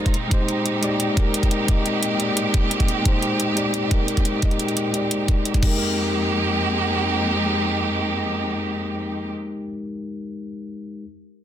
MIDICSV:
0, 0, Header, 1, 4, 480
1, 0, Start_track
1, 0, Tempo, 342857
1, 435, Time_signature, 4, 2, 24, 8
1, 16022, End_track
2, 0, Start_track
2, 0, Title_t, "Tine electric piano"
2, 0, Program_c, 0, 4
2, 0, Control_c, 0, 64, 127
2, 0, Note_on_c, 0, 56, 76
2, 0, Note_on_c, 0, 63, 71
2, 0, Note_on_c, 0, 67, 67
2, 0, Note_on_c, 0, 70, 86
2, 0, Note_on_c, 0, 72, 86
2, 0, Note_on_c, 0, 74, 81
2, 161, Note_off_c, 0, 56, 0
2, 174, Note_off_c, 0, 63, 0
2, 188, Note_off_c, 0, 67, 0
2, 201, Note_off_c, 0, 72, 0
2, 213, Control_c, 0, 64, 0
2, 216, Note_off_c, 0, 70, 0
2, 223, Note_off_c, 0, 74, 0
2, 393, Note_on_c, 0, 56, 90
2, 420, Note_on_c, 0, 63, 84
2, 447, Note_on_c, 0, 67, 81
2, 462, Control_c, 0, 64, 127
2, 473, Note_on_c, 0, 72, 98
2, 1107, Note_off_c, 0, 56, 0
2, 1120, Note_off_c, 0, 63, 0
2, 1134, Note_off_c, 0, 67, 0
2, 1138, Note_on_c, 0, 56, 87
2, 1146, Note_off_c, 0, 72, 0
2, 1151, Note_on_c, 0, 63, 79
2, 1163, Note_on_c, 0, 67, 78
2, 1178, Note_on_c, 0, 74, 92
2, 1581, Note_off_c, 0, 56, 0
2, 1598, Note_on_c, 0, 56, 81
2, 1605, Note_off_c, 0, 63, 0
2, 1612, Note_off_c, 0, 67, 0
2, 1619, Note_off_c, 0, 74, 0
2, 1624, Note_on_c, 0, 63, 70
2, 1650, Note_on_c, 0, 67, 74
2, 1678, Note_on_c, 0, 70, 90
2, 2296, Note_off_c, 0, 56, 0
2, 2313, Note_on_c, 0, 56, 73
2, 2322, Note_off_c, 0, 63, 0
2, 2335, Note_off_c, 0, 67, 0
2, 2341, Note_on_c, 0, 63, 68
2, 2349, Note_off_c, 0, 70, 0
2, 2367, Note_on_c, 0, 67, 70
2, 2394, Note_on_c, 0, 75, 82
2, 3016, Note_off_c, 0, 56, 0
2, 3033, Note_on_c, 0, 56, 74
2, 3040, Note_off_c, 0, 63, 0
2, 3053, Note_off_c, 0, 67, 0
2, 3059, Note_on_c, 0, 63, 68
2, 3067, Note_off_c, 0, 75, 0
2, 3086, Note_on_c, 0, 67, 68
2, 3112, Note_on_c, 0, 74, 84
2, 4219, Note_off_c, 0, 56, 0
2, 4236, Note_on_c, 0, 56, 87
2, 4239, Note_off_c, 0, 63, 0
2, 4253, Note_off_c, 0, 67, 0
2, 4262, Note_on_c, 0, 63, 83
2, 4266, Note_off_c, 0, 74, 0
2, 4289, Note_on_c, 0, 67, 82
2, 4316, Note_on_c, 0, 72, 100
2, 4948, Note_off_c, 0, 56, 0
2, 4961, Note_off_c, 0, 63, 0
2, 4972, Note_on_c, 0, 56, 87
2, 4974, Note_off_c, 0, 67, 0
2, 4985, Note_on_c, 0, 63, 81
2, 4988, Note_off_c, 0, 72, 0
2, 4999, Note_on_c, 0, 67, 77
2, 5011, Note_on_c, 0, 74, 98
2, 5418, Note_off_c, 0, 56, 0
2, 5434, Note_on_c, 0, 56, 81
2, 5443, Note_off_c, 0, 63, 0
2, 5450, Note_off_c, 0, 67, 0
2, 5456, Note_off_c, 0, 74, 0
2, 5460, Note_on_c, 0, 63, 71
2, 5487, Note_on_c, 0, 67, 76
2, 5515, Note_on_c, 0, 70, 90
2, 6137, Note_off_c, 0, 56, 0
2, 6154, Note_on_c, 0, 56, 75
2, 6160, Note_off_c, 0, 63, 0
2, 6173, Note_off_c, 0, 67, 0
2, 6181, Note_on_c, 0, 63, 66
2, 6187, Note_off_c, 0, 70, 0
2, 6207, Note_on_c, 0, 67, 67
2, 6233, Note_on_c, 0, 75, 81
2, 6859, Note_off_c, 0, 56, 0
2, 6876, Note_on_c, 0, 56, 75
2, 6881, Note_off_c, 0, 63, 0
2, 6893, Note_off_c, 0, 67, 0
2, 6901, Note_on_c, 0, 63, 69
2, 6906, Note_off_c, 0, 75, 0
2, 6927, Note_on_c, 0, 67, 69
2, 6955, Note_on_c, 0, 74, 79
2, 7797, Note_off_c, 0, 56, 0
2, 7814, Note_on_c, 0, 56, 79
2, 7837, Note_off_c, 0, 63, 0
2, 7854, Note_on_c, 0, 63, 71
2, 7877, Note_off_c, 0, 67, 0
2, 7891, Control_c, 0, 64, 0
2, 7894, Note_on_c, 0, 67, 71
2, 7895, Note_off_c, 0, 74, 0
2, 7932, Note_on_c, 0, 70, 89
2, 7997, Control_c, 0, 64, 127
2, 8136, Control_c, 0, 64, 0
2, 8386, Control_c, 0, 64, 127
2, 13348, Note_off_c, 0, 56, 0
2, 13388, Note_off_c, 0, 63, 0
2, 13428, Note_off_c, 0, 67, 0
2, 13466, Note_off_c, 0, 70, 0
2, 15472, Control_c, 0, 64, 0
2, 16022, End_track
3, 0, Start_track
3, 0, Title_t, "String section"
3, 0, Program_c, 1, 48
3, 0, Note_on_c, 1, 58, 73
3, 0, Note_on_c, 1, 63, 72
3, 0, Note_on_c, 1, 65, 86
3, 140, Note_off_c, 1, 58, 0
3, 161, Note_off_c, 1, 65, 0
3, 195, Note_on_c, 1, 56, 71
3, 197, Note_on_c, 1, 46, 77
3, 197, Note_on_c, 1, 60, 73
3, 197, Note_on_c, 1, 67, 84
3, 7820, Note_off_c, 1, 46, 0
3, 7820, Note_off_c, 1, 56, 0
3, 7820, Note_off_c, 1, 60, 0
3, 7820, Note_off_c, 1, 63, 0
3, 7820, Note_off_c, 1, 67, 0
3, 7877, Note_on_c, 1, 41, 77
3, 7877, Note_on_c, 1, 56, 71
3, 7877, Note_on_c, 1, 63, 72
3, 7878, Note_on_c, 1, 58, 73
3, 7878, Note_on_c, 1, 60, 73
3, 7878, Note_on_c, 1, 67, 90
3, 13020, Note_off_c, 1, 41, 0
3, 13020, Note_off_c, 1, 63, 0
3, 13021, Note_off_c, 1, 56, 0
3, 13021, Note_off_c, 1, 58, 0
3, 13021, Note_off_c, 1, 60, 0
3, 13021, Note_off_c, 1, 67, 0
3, 16022, End_track
4, 0, Start_track
4, 0, Title_t, "Drums"
4, 81, Note_on_c, 9, 36, 64
4, 81, Note_on_c, 9, 42, 35
4, 196, Note_off_c, 9, 42, 0
4, 196, Note_on_c, 9, 42, 63
4, 221, Note_off_c, 9, 36, 0
4, 336, Note_off_c, 9, 42, 0
4, 438, Note_on_c, 9, 36, 115
4, 438, Note_on_c, 9, 42, 88
4, 578, Note_off_c, 9, 36, 0
4, 578, Note_off_c, 9, 42, 0
4, 678, Note_on_c, 9, 42, 61
4, 818, Note_off_c, 9, 42, 0
4, 918, Note_on_c, 9, 42, 87
4, 1058, Note_off_c, 9, 42, 0
4, 1156, Note_on_c, 9, 42, 62
4, 1296, Note_off_c, 9, 42, 0
4, 1397, Note_on_c, 9, 42, 82
4, 1537, Note_off_c, 9, 42, 0
4, 1638, Note_on_c, 9, 36, 98
4, 1639, Note_on_c, 9, 42, 61
4, 1778, Note_off_c, 9, 36, 0
4, 1779, Note_off_c, 9, 42, 0
4, 1878, Note_on_c, 9, 42, 85
4, 2002, Note_off_c, 9, 42, 0
4, 2002, Note_on_c, 9, 36, 59
4, 2002, Note_on_c, 9, 42, 35
4, 2115, Note_off_c, 9, 42, 0
4, 2115, Note_on_c, 9, 42, 63
4, 2142, Note_off_c, 9, 36, 0
4, 2255, Note_off_c, 9, 42, 0
4, 2357, Note_on_c, 9, 42, 87
4, 2358, Note_on_c, 9, 36, 111
4, 2497, Note_off_c, 9, 42, 0
4, 2498, Note_off_c, 9, 36, 0
4, 2598, Note_on_c, 9, 42, 57
4, 2738, Note_off_c, 9, 42, 0
4, 2836, Note_on_c, 9, 42, 86
4, 2976, Note_off_c, 9, 42, 0
4, 3075, Note_on_c, 9, 42, 60
4, 3215, Note_off_c, 9, 42, 0
4, 3315, Note_on_c, 9, 42, 82
4, 3455, Note_off_c, 9, 42, 0
4, 3556, Note_on_c, 9, 42, 62
4, 3557, Note_on_c, 9, 36, 98
4, 3696, Note_off_c, 9, 42, 0
4, 3697, Note_off_c, 9, 36, 0
4, 3795, Note_on_c, 9, 42, 85
4, 3920, Note_off_c, 9, 42, 0
4, 3920, Note_on_c, 9, 36, 58
4, 3920, Note_on_c, 9, 42, 34
4, 4037, Note_off_c, 9, 42, 0
4, 4037, Note_on_c, 9, 42, 60
4, 4060, Note_off_c, 9, 36, 0
4, 4177, Note_off_c, 9, 42, 0
4, 4276, Note_on_c, 9, 36, 106
4, 4276, Note_on_c, 9, 42, 86
4, 4416, Note_off_c, 9, 36, 0
4, 4416, Note_off_c, 9, 42, 0
4, 4514, Note_on_c, 9, 42, 64
4, 4654, Note_off_c, 9, 42, 0
4, 4756, Note_on_c, 9, 42, 88
4, 4896, Note_off_c, 9, 42, 0
4, 4995, Note_on_c, 9, 42, 61
4, 5135, Note_off_c, 9, 42, 0
4, 5233, Note_on_c, 9, 42, 83
4, 5373, Note_off_c, 9, 42, 0
4, 5475, Note_on_c, 9, 42, 63
4, 5476, Note_on_c, 9, 36, 92
4, 5615, Note_off_c, 9, 42, 0
4, 5616, Note_off_c, 9, 36, 0
4, 5714, Note_on_c, 9, 42, 84
4, 5839, Note_off_c, 9, 42, 0
4, 5839, Note_on_c, 9, 42, 34
4, 5840, Note_on_c, 9, 36, 57
4, 5951, Note_off_c, 9, 42, 0
4, 5951, Note_on_c, 9, 42, 63
4, 5980, Note_off_c, 9, 36, 0
4, 6091, Note_off_c, 9, 42, 0
4, 6192, Note_on_c, 9, 42, 92
4, 6196, Note_on_c, 9, 36, 107
4, 6317, Note_off_c, 9, 42, 0
4, 6317, Note_on_c, 9, 42, 35
4, 6336, Note_off_c, 9, 36, 0
4, 6432, Note_off_c, 9, 42, 0
4, 6432, Note_on_c, 9, 42, 62
4, 6558, Note_off_c, 9, 42, 0
4, 6558, Note_on_c, 9, 42, 35
4, 6673, Note_off_c, 9, 42, 0
4, 6673, Note_on_c, 9, 42, 89
4, 6813, Note_off_c, 9, 42, 0
4, 6915, Note_on_c, 9, 42, 64
4, 7055, Note_off_c, 9, 42, 0
4, 7155, Note_on_c, 9, 42, 89
4, 7295, Note_off_c, 9, 42, 0
4, 7397, Note_on_c, 9, 36, 93
4, 7397, Note_on_c, 9, 42, 68
4, 7537, Note_off_c, 9, 36, 0
4, 7537, Note_off_c, 9, 42, 0
4, 7636, Note_on_c, 9, 42, 90
4, 7760, Note_off_c, 9, 42, 0
4, 7760, Note_on_c, 9, 36, 56
4, 7760, Note_on_c, 9, 42, 35
4, 7876, Note_off_c, 9, 36, 0
4, 7876, Note_on_c, 9, 36, 103
4, 7876, Note_on_c, 9, 49, 82
4, 7900, Note_off_c, 9, 42, 0
4, 8016, Note_off_c, 9, 36, 0
4, 8016, Note_off_c, 9, 49, 0
4, 16022, End_track
0, 0, End_of_file